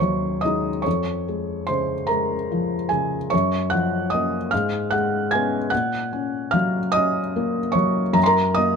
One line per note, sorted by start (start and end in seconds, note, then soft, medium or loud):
0.00 0.82 D#2 soft
0.00 0.70 F#3 soft
0.00 0.88 C5 soft
0.00 0.40 C#5 soft
0.00 0.88 C6 medium
0.00 0.42 C#6 medium
0.41 0.82 G#3 soft
0.41 0.82 D#4 soft
0.41 0.82 D#5 soft
0.41 0.85 D#6 medium
0.82 3.29 F2 soft
0.82 1.64 C#5 soft
0.82 1.68 C#6 medium
1.28 1.94 G#3 soft
1.67 2.35 C#3 soft
1.67 2.07 C5 soft
1.67 2.09 C6 medium
2.07 2.76 G#3 soft
2.07 2.87 A#4 medium
2.07 2.90 A#5 medium
2.52 3.17 F3 soft
2.89 3.33 C#3 soft
2.89 3.29 G#4 soft
2.89 3.31 G#5 medium
3.30 4.49 F#2 soft
3.30 3.69 C#5 medium
3.30 3.71 C#6 medium
3.70 4.36 F3 soft
3.70 4.08 F#5 medium
3.70 4.11 F#6 medium
4.10 4.49 A#3 soft
4.10 4.49 D#5 soft
4.10 4.51 D#6 medium
4.14 4.49 C#4 soft
4.51 5.69 G#2 medium
4.51 4.89 F5 soft
4.51 4.92 F6 medium
4.91 5.56 G#3 soft
4.91 5.29 F#5 medium
4.91 5.31 F#6 medium
5.31 5.69 B3 soft
5.31 5.69 C#4 soft
5.31 5.69 G#5 medium
5.31 5.71 G#6 medium
5.70 8.14 A#2 soft
5.70 6.50 F#5 medium
5.70 6.53 F#6 medium
6.13 6.79 C#4 soft
6.51 7.19 F#3 soft
6.51 6.91 F5 medium
6.51 6.94 F6 medium
6.92 7.60 C#4 soft
6.92 7.71 D#5 medium
6.92 7.74 D#6 medium
7.36 8.01 A#3 soft
7.72 8.17 F#3 soft
7.72 8.13 C#5 medium
7.72 8.15 C#6 medium
8.13 8.76 F#2 medium
8.13 8.21 A#5 medium
8.23 8.55 A#4 medium
8.23 8.57 A#5 medium
8.23 8.30 C6 medium
8.55 8.76 A#3 soft
8.55 8.76 D#5 medium
8.55 8.76 D#6 medium